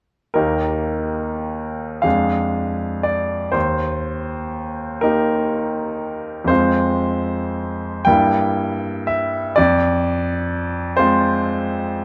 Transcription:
0.34 2.01 D#2 soft
0.34 2.01 A#3 soft
0.34 2.01 D#4 soft
0.34 2.02 G4 soft
0.34 2.04 A#4 soft
2.02 3.50 F2 soft
2.02 3.51 G#3 soft
2.02 3.51 D4 soft
2.02 3.51 G#4 soft
2.02 3.05 F5 medium
3.03 3.54 D5 soft
3.52 4.98 D#2 soft
3.52 5.02 C5 medium
5.01 6.45 A#3 soft
5.01 6.46 D#4 soft
5.01 6.46 G4 soft
5.01 6.49 A#4 medium
6.44 8.01 F2 soft
6.44 8.06 C5 medium
6.49 8.03 G#3 soft
6.49 8.03 C4 soft
6.49 8.03 F4 soft
8.05 9.54 G2 soft
8.05 9.53 G3 soft
8.05 9.54 A#3 soft
8.05 9.54 E4 soft
8.05 9.08 G5 medium
9.07 9.57 E5 medium
9.56 10.95 F2 medium
9.56 10.98 D5 medium
10.97 12.05 G#3 soft
10.97 12.05 C4 soft
10.97 12.05 F4 soft
10.97 12.05 C5 medium

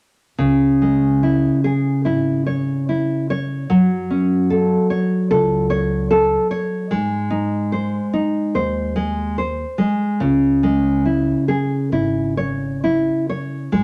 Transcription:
0.38 1.47 C#2 medium
0.38 3.67 C#3 medium
0.82 1.22 G#3 soft
1.23 1.63 E4 soft
1.64 2.04 G#4 soft
2.05 3.13 G#1 medium
2.05 2.46 E4 soft
2.46 2.87 C#5 soft
2.89 3.29 E4 soft
3.30 3.70 C#5 medium
3.70 4.75 F#2 medium
3.70 6.87 F#3 medium
4.10 4.50 C#4 soft
4.50 4.89 A4 soft
4.90 5.29 C#5 medium
5.31 6.35 C#2 medium
5.31 5.70 A4 soft
5.70 6.10 C#5 soft
6.11 6.50 A4 medium
6.51 6.90 C#5 medium
6.91 7.98 G#2 medium
6.91 8.95 G#3 medium
7.30 7.71 D#4 soft
7.72 8.12 C5 soft
8.13 8.53 D#4 medium
8.55 9.63 D#2 medium
8.55 8.94 C5 soft
8.96 9.36 G#3 medium
9.38 9.78 C5 medium
9.78 10.19 G#3 medium
10.20 11.32 C#2 medium
10.20 13.67 C#3 medium
10.63 11.04 G#3 soft
11.05 11.47 E4 soft
11.48 11.91 G#4 soft
11.92 13.09 G#1 medium
11.92 12.36 E4 soft
12.37 12.82 C#5 soft
12.84 13.27 E4 soft
13.29 13.71 C#5 soft
13.72 13.84 G#1 medium
13.72 13.84 G#3 medium

